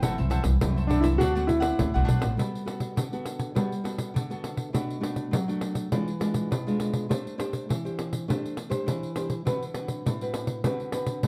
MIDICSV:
0, 0, Header, 1, 7, 480
1, 0, Start_track
1, 0, Key_signature, 1, "major"
1, 0, Tempo, 589971
1, 19, Time_signature, 4, 2, 24, 8
1, 9172, End_track
2, 0, Start_track
2, 0, Title_t, "Cavaquinho"
2, 0, Program_c, 0, 24
2, 22, Note_on_c, 0, 66, 67
2, 26, Note_on_c, 0, 69, 67
2, 30, Note_on_c, 0, 72, 69
2, 31, Note_on_c, 0, 76, 88
2, 131, Note_off_c, 0, 66, 0
2, 133, Note_off_c, 0, 69, 0
2, 135, Note_off_c, 0, 72, 0
2, 135, Note_off_c, 0, 76, 0
2, 147, Note_on_c, 0, 76, 53
2, 153, Note_on_c, 0, 72, 47
2, 159, Note_on_c, 0, 69, 43
2, 240, Note_off_c, 0, 69, 0
2, 242, Note_off_c, 0, 72, 0
2, 244, Note_on_c, 0, 66, 70
2, 246, Note_off_c, 0, 76, 0
2, 250, Note_on_c, 0, 69, 65
2, 252, Note_on_c, 0, 72, 76
2, 256, Note_on_c, 0, 76, 79
2, 344, Note_off_c, 0, 66, 0
2, 344, Note_off_c, 0, 69, 0
2, 349, Note_off_c, 0, 72, 0
2, 350, Note_off_c, 0, 76, 0
2, 621, Note_on_c, 0, 76, 50
2, 628, Note_on_c, 0, 72, 44
2, 633, Note_on_c, 0, 69, 38
2, 713, Note_off_c, 0, 69, 0
2, 718, Note_off_c, 0, 72, 0
2, 718, Note_on_c, 0, 66, 50
2, 719, Note_off_c, 0, 76, 0
2, 723, Note_on_c, 0, 69, 46
2, 727, Note_on_c, 0, 72, 51
2, 728, Note_on_c, 0, 76, 52
2, 823, Note_off_c, 0, 76, 0
2, 826, Note_off_c, 0, 72, 0
2, 831, Note_off_c, 0, 69, 0
2, 833, Note_on_c, 0, 76, 68
2, 835, Note_on_c, 0, 72, 61
2, 838, Note_off_c, 0, 66, 0
2, 841, Note_on_c, 0, 69, 59
2, 955, Note_off_c, 0, 76, 0
2, 957, Note_off_c, 0, 72, 0
2, 960, Note_off_c, 0, 69, 0
2, 971, Note_on_c, 0, 62, 65
2, 976, Note_on_c, 0, 72, 75
2, 981, Note_on_c, 0, 74, 80
2, 986, Note_on_c, 0, 78, 72
2, 1085, Note_off_c, 0, 62, 0
2, 1087, Note_off_c, 0, 72, 0
2, 1089, Note_off_c, 0, 74, 0
2, 1092, Note_off_c, 0, 78, 0
2, 1101, Note_on_c, 0, 78, 57
2, 1108, Note_on_c, 0, 74, 46
2, 1110, Note_on_c, 0, 72, 46
2, 1190, Note_off_c, 0, 72, 0
2, 1192, Note_off_c, 0, 74, 0
2, 1195, Note_off_c, 0, 78, 0
2, 1302, Note_on_c, 0, 78, 80
2, 1307, Note_on_c, 0, 74, 59
2, 1315, Note_on_c, 0, 72, 61
2, 1550, Note_off_c, 0, 78, 0
2, 1553, Note_off_c, 0, 74, 0
2, 1556, Note_off_c, 0, 72, 0
2, 1578, Note_on_c, 0, 78, 58
2, 1582, Note_on_c, 0, 74, 52
2, 1590, Note_on_c, 0, 72, 46
2, 1659, Note_off_c, 0, 72, 0
2, 1665, Note_off_c, 0, 74, 0
2, 1665, Note_on_c, 0, 62, 72
2, 1669, Note_on_c, 0, 72, 76
2, 1670, Note_off_c, 0, 78, 0
2, 1674, Note_on_c, 0, 74, 68
2, 1680, Note_on_c, 0, 78, 74
2, 1776, Note_off_c, 0, 78, 0
2, 1782, Note_off_c, 0, 74, 0
2, 1786, Note_on_c, 0, 78, 51
2, 1790, Note_off_c, 0, 72, 0
2, 1791, Note_off_c, 0, 62, 0
2, 1791, Note_on_c, 0, 74, 47
2, 1799, Note_on_c, 0, 72, 42
2, 1912, Note_off_c, 0, 78, 0
2, 1914, Note_off_c, 0, 74, 0
2, 1918, Note_off_c, 0, 72, 0
2, 9172, End_track
3, 0, Start_track
3, 0, Title_t, "Grand piano"
3, 0, Program_c, 1, 0
3, 709, Note_on_c, 1, 62, 90
3, 817, Note_on_c, 1, 64, 84
3, 834, Note_off_c, 1, 62, 0
3, 858, Note_off_c, 1, 64, 0
3, 961, Note_on_c, 1, 66, 105
3, 1198, Note_on_c, 1, 64, 85
3, 1216, Note_off_c, 1, 66, 0
3, 1654, Note_off_c, 1, 64, 0
3, 9172, End_track
4, 0, Start_track
4, 0, Title_t, "Nylon-string guitar"
4, 0, Program_c, 2, 24
4, 16, Note_on_c, 2, 42, 53
4, 18, Note_on_c, 2, 52, 62
4, 22, Note_on_c, 2, 60, 58
4, 23, Note_on_c, 2, 57, 55
4, 459, Note_off_c, 2, 52, 0
4, 460, Note_off_c, 2, 57, 0
4, 461, Note_off_c, 2, 60, 0
4, 473, Note_off_c, 2, 42, 0
4, 498, Note_on_c, 2, 42, 69
4, 498, Note_on_c, 2, 52, 62
4, 502, Note_on_c, 2, 57, 67
4, 507, Note_on_c, 2, 60, 69
4, 638, Note_off_c, 2, 52, 0
4, 641, Note_off_c, 2, 57, 0
4, 643, Note_off_c, 2, 60, 0
4, 732, Note_on_c, 2, 52, 59
4, 737, Note_on_c, 2, 60, 60
4, 738, Note_on_c, 2, 57, 52
4, 954, Note_off_c, 2, 42, 0
4, 956, Note_off_c, 2, 52, 0
4, 957, Note_off_c, 2, 57, 0
4, 958, Note_off_c, 2, 60, 0
4, 979, Note_on_c, 2, 50, 58
4, 981, Note_on_c, 2, 57, 59
4, 982, Note_on_c, 2, 60, 62
4, 987, Note_on_c, 2, 66, 65
4, 1051, Note_off_c, 2, 57, 0
4, 1051, Note_off_c, 2, 60, 0
4, 1054, Note_off_c, 2, 66, 0
4, 1103, Note_on_c, 2, 57, 66
4, 1108, Note_on_c, 2, 60, 66
4, 1110, Note_on_c, 2, 66, 61
4, 1434, Note_off_c, 2, 50, 0
4, 1455, Note_on_c, 2, 45, 60
4, 1541, Note_off_c, 2, 57, 0
4, 1543, Note_off_c, 2, 60, 0
4, 1545, Note_off_c, 2, 66, 0
4, 1585, Note_on_c, 2, 57, 69
4, 1589, Note_on_c, 2, 60, 62
4, 1591, Note_on_c, 2, 66, 75
4, 1903, Note_off_c, 2, 57, 0
4, 1903, Note_off_c, 2, 60, 0
4, 1905, Note_off_c, 2, 66, 0
4, 1912, Note_off_c, 2, 45, 0
4, 1929, Note_on_c, 2, 55, 55
4, 1932, Note_on_c, 2, 59, 45
4, 1934, Note_on_c, 2, 66, 47
4, 1937, Note_on_c, 2, 69, 49
4, 2136, Note_off_c, 2, 59, 0
4, 2136, Note_off_c, 2, 66, 0
4, 2138, Note_off_c, 2, 69, 0
4, 2159, Note_on_c, 2, 59, 47
4, 2165, Note_on_c, 2, 66, 50
4, 2169, Note_on_c, 2, 69, 48
4, 2389, Note_off_c, 2, 55, 0
4, 2410, Note_on_c, 2, 50, 64
4, 2490, Note_off_c, 2, 59, 0
4, 2491, Note_off_c, 2, 66, 0
4, 2494, Note_off_c, 2, 69, 0
4, 2542, Note_on_c, 2, 59, 53
4, 2547, Note_on_c, 2, 66, 50
4, 2550, Note_on_c, 2, 69, 60
4, 2862, Note_off_c, 2, 59, 0
4, 2863, Note_off_c, 2, 66, 0
4, 2865, Note_off_c, 2, 69, 0
4, 2869, Note_off_c, 2, 50, 0
4, 2887, Note_on_c, 2, 55, 62
4, 2889, Note_on_c, 2, 59, 54
4, 2892, Note_on_c, 2, 66, 57
4, 2897, Note_on_c, 2, 69, 53
4, 3034, Note_off_c, 2, 59, 0
4, 3036, Note_off_c, 2, 66, 0
4, 3037, Note_off_c, 2, 69, 0
4, 3123, Note_on_c, 2, 59, 55
4, 3126, Note_on_c, 2, 66, 45
4, 3130, Note_on_c, 2, 69, 55
4, 3348, Note_off_c, 2, 55, 0
4, 3355, Note_off_c, 2, 59, 0
4, 3356, Note_off_c, 2, 66, 0
4, 3359, Note_off_c, 2, 69, 0
4, 3369, Note_on_c, 2, 50, 66
4, 3498, Note_on_c, 2, 59, 58
4, 3502, Note_on_c, 2, 66, 55
4, 3506, Note_on_c, 2, 69, 64
4, 3820, Note_off_c, 2, 59, 0
4, 3820, Note_off_c, 2, 66, 0
4, 3823, Note_off_c, 2, 69, 0
4, 3829, Note_off_c, 2, 50, 0
4, 3848, Note_on_c, 2, 57, 46
4, 3850, Note_on_c, 2, 47, 56
4, 3851, Note_on_c, 2, 62, 47
4, 3857, Note_on_c, 2, 66, 53
4, 4054, Note_off_c, 2, 57, 0
4, 4056, Note_off_c, 2, 62, 0
4, 4059, Note_off_c, 2, 66, 0
4, 4072, Note_on_c, 2, 57, 48
4, 4076, Note_on_c, 2, 62, 47
4, 4079, Note_on_c, 2, 66, 48
4, 4310, Note_off_c, 2, 47, 0
4, 4310, Note_off_c, 2, 57, 0
4, 4312, Note_off_c, 2, 62, 0
4, 4313, Note_off_c, 2, 66, 0
4, 4322, Note_on_c, 2, 54, 67
4, 4458, Note_on_c, 2, 57, 58
4, 4460, Note_on_c, 2, 62, 55
4, 4465, Note_on_c, 2, 66, 60
4, 4780, Note_off_c, 2, 57, 0
4, 4780, Note_off_c, 2, 62, 0
4, 4783, Note_off_c, 2, 66, 0
4, 4786, Note_off_c, 2, 54, 0
4, 4815, Note_on_c, 2, 52, 68
4, 4816, Note_on_c, 2, 56, 49
4, 4819, Note_on_c, 2, 62, 50
4, 4819, Note_on_c, 2, 65, 52
4, 4958, Note_off_c, 2, 56, 0
4, 4958, Note_off_c, 2, 62, 0
4, 4960, Note_off_c, 2, 65, 0
4, 5044, Note_on_c, 2, 56, 53
4, 5047, Note_on_c, 2, 62, 48
4, 5051, Note_on_c, 2, 65, 59
4, 5273, Note_off_c, 2, 52, 0
4, 5276, Note_off_c, 2, 56, 0
4, 5278, Note_off_c, 2, 62, 0
4, 5279, Note_off_c, 2, 65, 0
4, 5294, Note_on_c, 2, 47, 69
4, 5424, Note_on_c, 2, 56, 58
4, 5427, Note_on_c, 2, 62, 55
4, 5431, Note_on_c, 2, 65, 59
4, 5742, Note_off_c, 2, 56, 0
4, 5744, Note_off_c, 2, 62, 0
4, 5745, Note_off_c, 2, 65, 0
4, 5752, Note_off_c, 2, 47, 0
4, 5770, Note_on_c, 2, 57, 53
4, 5774, Note_on_c, 2, 62, 47
4, 5778, Note_on_c, 2, 72, 50
4, 5779, Note_on_c, 2, 67, 45
4, 5977, Note_off_c, 2, 62, 0
4, 5978, Note_off_c, 2, 67, 0
4, 5979, Note_off_c, 2, 72, 0
4, 6003, Note_on_c, 2, 62, 45
4, 6006, Note_on_c, 2, 67, 50
4, 6010, Note_on_c, 2, 72, 55
4, 6231, Note_off_c, 2, 57, 0
4, 6235, Note_off_c, 2, 62, 0
4, 6237, Note_off_c, 2, 67, 0
4, 6239, Note_off_c, 2, 72, 0
4, 6258, Note_on_c, 2, 52, 67
4, 6383, Note_on_c, 2, 62, 52
4, 6386, Note_on_c, 2, 67, 51
4, 6388, Note_on_c, 2, 72, 60
4, 6702, Note_off_c, 2, 62, 0
4, 6703, Note_off_c, 2, 67, 0
4, 6705, Note_off_c, 2, 72, 0
4, 6714, Note_off_c, 2, 52, 0
4, 6738, Note_on_c, 2, 57, 65
4, 6738, Note_on_c, 2, 62, 50
4, 6739, Note_on_c, 2, 67, 54
4, 6744, Note_on_c, 2, 72, 57
4, 6963, Note_off_c, 2, 62, 0
4, 6963, Note_off_c, 2, 67, 0
4, 6966, Note_off_c, 2, 72, 0
4, 7074, Note_on_c, 2, 62, 54
4, 7077, Note_on_c, 2, 67, 56
4, 7081, Note_on_c, 2, 72, 65
4, 7194, Note_off_c, 2, 57, 0
4, 7212, Note_on_c, 2, 52, 67
4, 7407, Note_off_c, 2, 62, 0
4, 7409, Note_off_c, 2, 67, 0
4, 7411, Note_off_c, 2, 72, 0
4, 7447, Note_on_c, 2, 62, 47
4, 7451, Note_on_c, 2, 67, 45
4, 7456, Note_on_c, 2, 72, 51
4, 7593, Note_off_c, 2, 62, 0
4, 7595, Note_off_c, 2, 67, 0
4, 7598, Note_off_c, 2, 72, 0
4, 7670, Note_off_c, 2, 52, 0
4, 7691, Note_on_c, 2, 50, 54
4, 7692, Note_on_c, 2, 60, 43
4, 7695, Note_on_c, 2, 66, 46
4, 7700, Note_on_c, 2, 71, 45
4, 7835, Note_off_c, 2, 60, 0
4, 7837, Note_off_c, 2, 66, 0
4, 7839, Note_off_c, 2, 71, 0
4, 7924, Note_on_c, 2, 60, 45
4, 7929, Note_on_c, 2, 66, 45
4, 7933, Note_on_c, 2, 71, 50
4, 8150, Note_off_c, 2, 50, 0
4, 8183, Note_on_c, 2, 45, 74
4, 8252, Note_off_c, 2, 60, 0
4, 8254, Note_off_c, 2, 66, 0
4, 8256, Note_off_c, 2, 71, 0
4, 8309, Note_on_c, 2, 60, 52
4, 8314, Note_on_c, 2, 66, 52
4, 8318, Note_on_c, 2, 71, 55
4, 8625, Note_off_c, 2, 60, 0
4, 8626, Note_off_c, 2, 66, 0
4, 8629, Note_off_c, 2, 71, 0
4, 8635, Note_off_c, 2, 45, 0
4, 8668, Note_on_c, 2, 50, 64
4, 8668, Note_on_c, 2, 60, 49
4, 8672, Note_on_c, 2, 66, 57
4, 8673, Note_on_c, 2, 71, 57
4, 8863, Note_off_c, 2, 60, 0
4, 8864, Note_off_c, 2, 66, 0
4, 8866, Note_off_c, 2, 71, 0
4, 8890, Note_on_c, 2, 60, 52
4, 8893, Note_on_c, 2, 66, 51
4, 8899, Note_on_c, 2, 71, 49
4, 9118, Note_off_c, 2, 50, 0
4, 9118, Note_off_c, 2, 60, 0
4, 9120, Note_off_c, 2, 66, 0
4, 9122, Note_off_c, 2, 71, 0
4, 9138, Note_on_c, 2, 45, 65
4, 9172, Note_off_c, 2, 45, 0
4, 9172, End_track
5, 0, Start_track
5, 0, Title_t, "Upright bass"
5, 0, Program_c, 3, 32
5, 18, Note_on_c, 3, 30, 92
5, 120, Note_off_c, 3, 30, 0
5, 149, Note_on_c, 3, 36, 92
5, 348, Note_off_c, 3, 36, 0
5, 360, Note_on_c, 3, 36, 85
5, 469, Note_off_c, 3, 36, 0
5, 503, Note_on_c, 3, 36, 88
5, 983, Note_off_c, 3, 36, 0
5, 983, Note_on_c, 3, 38, 83
5, 1388, Note_off_c, 3, 38, 0
5, 1461, Note_on_c, 3, 38, 85
5, 1567, Note_off_c, 3, 38, 0
5, 1587, Note_on_c, 3, 36, 80
5, 1684, Note_off_c, 3, 36, 0
5, 1689, Note_on_c, 3, 35, 81
5, 1800, Note_off_c, 3, 35, 0
5, 1806, Note_on_c, 3, 33, 73
5, 1919, Note_off_c, 3, 33, 0
5, 9172, End_track
6, 0, Start_track
6, 0, Title_t, "Muted cavaquinho strokes"
6, 354, Note_on_c, 9, 29, 37
6, 435, Note_off_c, 9, 29, 0
6, 1200, Note_on_c, 9, 29, 39
6, 1281, Note_off_c, 9, 29, 0
6, 9172, End_track
7, 0, Start_track
7, 0, Title_t, "Pandeiro"
7, 21, Note_on_c, 9, 54, 78
7, 103, Note_off_c, 9, 54, 0
7, 146, Note_on_c, 9, 54, 32
7, 228, Note_off_c, 9, 54, 0
7, 250, Note_on_c, 9, 54, 60
7, 332, Note_off_c, 9, 54, 0
7, 356, Note_on_c, 9, 54, 70
7, 438, Note_off_c, 9, 54, 0
7, 499, Note_on_c, 9, 54, 95
7, 580, Note_off_c, 9, 54, 0
7, 633, Note_on_c, 9, 54, 32
7, 714, Note_off_c, 9, 54, 0
7, 736, Note_on_c, 9, 54, 58
7, 817, Note_off_c, 9, 54, 0
7, 844, Note_on_c, 9, 54, 63
7, 925, Note_off_c, 9, 54, 0
7, 983, Note_on_c, 9, 54, 76
7, 1065, Note_off_c, 9, 54, 0
7, 1111, Note_on_c, 9, 54, 37
7, 1193, Note_off_c, 9, 54, 0
7, 1211, Note_on_c, 9, 54, 58
7, 1293, Note_off_c, 9, 54, 0
7, 1320, Note_on_c, 9, 54, 73
7, 1402, Note_off_c, 9, 54, 0
7, 1457, Note_on_c, 9, 54, 76
7, 1538, Note_off_c, 9, 54, 0
7, 1589, Note_on_c, 9, 54, 31
7, 1671, Note_off_c, 9, 54, 0
7, 1696, Note_on_c, 9, 54, 63
7, 1778, Note_off_c, 9, 54, 0
7, 1804, Note_on_c, 9, 54, 72
7, 1885, Note_off_c, 9, 54, 0
7, 1947, Note_on_c, 9, 54, 67
7, 2028, Note_off_c, 9, 54, 0
7, 2077, Note_on_c, 9, 54, 27
7, 2159, Note_off_c, 9, 54, 0
7, 2177, Note_on_c, 9, 54, 56
7, 2259, Note_off_c, 9, 54, 0
7, 2281, Note_on_c, 9, 54, 50
7, 2362, Note_off_c, 9, 54, 0
7, 2419, Note_on_c, 9, 54, 72
7, 2500, Note_off_c, 9, 54, 0
7, 2546, Note_on_c, 9, 54, 24
7, 2627, Note_off_c, 9, 54, 0
7, 2649, Note_on_c, 9, 54, 56
7, 2730, Note_off_c, 9, 54, 0
7, 2761, Note_on_c, 9, 54, 49
7, 2843, Note_off_c, 9, 54, 0
7, 2899, Note_on_c, 9, 54, 72
7, 2980, Note_off_c, 9, 54, 0
7, 3029, Note_on_c, 9, 54, 29
7, 3110, Note_off_c, 9, 54, 0
7, 3134, Note_on_c, 9, 54, 51
7, 3215, Note_off_c, 9, 54, 0
7, 3242, Note_on_c, 9, 54, 53
7, 3323, Note_off_c, 9, 54, 0
7, 3386, Note_on_c, 9, 54, 68
7, 3467, Note_off_c, 9, 54, 0
7, 3509, Note_on_c, 9, 54, 28
7, 3590, Note_off_c, 9, 54, 0
7, 3612, Note_on_c, 9, 54, 54
7, 3693, Note_off_c, 9, 54, 0
7, 3721, Note_on_c, 9, 54, 49
7, 3802, Note_off_c, 9, 54, 0
7, 3860, Note_on_c, 9, 54, 69
7, 3942, Note_off_c, 9, 54, 0
7, 3990, Note_on_c, 9, 54, 27
7, 4071, Note_off_c, 9, 54, 0
7, 4096, Note_on_c, 9, 54, 59
7, 4178, Note_off_c, 9, 54, 0
7, 4200, Note_on_c, 9, 54, 49
7, 4281, Note_off_c, 9, 54, 0
7, 4338, Note_on_c, 9, 54, 79
7, 4419, Note_off_c, 9, 54, 0
7, 4469, Note_on_c, 9, 54, 30
7, 4551, Note_off_c, 9, 54, 0
7, 4567, Note_on_c, 9, 54, 58
7, 4648, Note_off_c, 9, 54, 0
7, 4679, Note_on_c, 9, 54, 51
7, 4761, Note_off_c, 9, 54, 0
7, 4817, Note_on_c, 9, 54, 71
7, 4898, Note_off_c, 9, 54, 0
7, 4944, Note_on_c, 9, 54, 29
7, 5026, Note_off_c, 9, 54, 0
7, 5052, Note_on_c, 9, 54, 61
7, 5134, Note_off_c, 9, 54, 0
7, 5160, Note_on_c, 9, 54, 55
7, 5242, Note_off_c, 9, 54, 0
7, 5304, Note_on_c, 9, 54, 71
7, 5385, Note_off_c, 9, 54, 0
7, 5435, Note_on_c, 9, 54, 28
7, 5516, Note_off_c, 9, 54, 0
7, 5531, Note_on_c, 9, 54, 56
7, 5612, Note_off_c, 9, 54, 0
7, 5642, Note_on_c, 9, 54, 54
7, 5723, Note_off_c, 9, 54, 0
7, 5783, Note_on_c, 9, 54, 68
7, 5864, Note_off_c, 9, 54, 0
7, 5915, Note_on_c, 9, 54, 28
7, 5996, Note_off_c, 9, 54, 0
7, 6018, Note_on_c, 9, 54, 61
7, 6099, Note_off_c, 9, 54, 0
7, 6128, Note_on_c, 9, 54, 45
7, 6209, Note_off_c, 9, 54, 0
7, 6267, Note_on_c, 9, 54, 73
7, 6349, Note_off_c, 9, 54, 0
7, 6397, Note_on_c, 9, 54, 29
7, 6478, Note_off_c, 9, 54, 0
7, 6498, Note_on_c, 9, 54, 58
7, 6580, Note_off_c, 9, 54, 0
7, 6612, Note_on_c, 9, 54, 54
7, 6694, Note_off_c, 9, 54, 0
7, 6753, Note_on_c, 9, 54, 73
7, 6835, Note_off_c, 9, 54, 0
7, 6879, Note_on_c, 9, 54, 30
7, 6961, Note_off_c, 9, 54, 0
7, 6974, Note_on_c, 9, 54, 53
7, 7055, Note_off_c, 9, 54, 0
7, 7089, Note_on_c, 9, 54, 57
7, 7171, Note_off_c, 9, 54, 0
7, 7223, Note_on_c, 9, 54, 67
7, 7305, Note_off_c, 9, 54, 0
7, 7348, Note_on_c, 9, 54, 26
7, 7430, Note_off_c, 9, 54, 0
7, 7451, Note_on_c, 9, 54, 59
7, 7532, Note_off_c, 9, 54, 0
7, 7564, Note_on_c, 9, 54, 48
7, 7645, Note_off_c, 9, 54, 0
7, 7702, Note_on_c, 9, 54, 67
7, 7783, Note_off_c, 9, 54, 0
7, 7831, Note_on_c, 9, 54, 30
7, 7912, Note_off_c, 9, 54, 0
7, 7929, Note_on_c, 9, 54, 57
7, 8010, Note_off_c, 9, 54, 0
7, 8041, Note_on_c, 9, 54, 46
7, 8122, Note_off_c, 9, 54, 0
7, 8188, Note_on_c, 9, 54, 74
7, 8269, Note_off_c, 9, 54, 0
7, 8309, Note_on_c, 9, 54, 30
7, 8391, Note_off_c, 9, 54, 0
7, 8411, Note_on_c, 9, 54, 61
7, 8492, Note_off_c, 9, 54, 0
7, 8520, Note_on_c, 9, 54, 50
7, 8601, Note_off_c, 9, 54, 0
7, 8658, Note_on_c, 9, 54, 77
7, 8739, Note_off_c, 9, 54, 0
7, 8786, Note_on_c, 9, 54, 28
7, 8867, Note_off_c, 9, 54, 0
7, 8888, Note_on_c, 9, 54, 60
7, 8969, Note_off_c, 9, 54, 0
7, 9002, Note_on_c, 9, 54, 54
7, 9083, Note_off_c, 9, 54, 0
7, 9138, Note_on_c, 9, 54, 68
7, 9172, Note_off_c, 9, 54, 0
7, 9172, End_track
0, 0, End_of_file